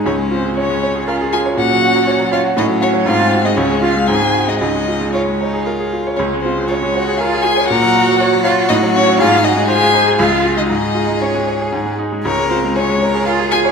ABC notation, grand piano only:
X:1
M:3/4
L:1/16
Q:1/4=119
K:Db
V:1 name="Grand piano"
D,, A, F A, d A, d A B A F d | B,, G, G G, d G, d G =A,, G, G G, | A,, A, G A, D,, A, F A, A,, A, G A, | D,, A, F A, d A, d A B A F d |
D,, A, F A, d A, d A B A F d | B,, G, G G, d G, d G =A,, G, G G, | A,, A, G A, c A, c A D,, A, F A, | A,, A, F A, d A, d A A,, A, E A, |
D,, A, F A, d A, d A B A F d |]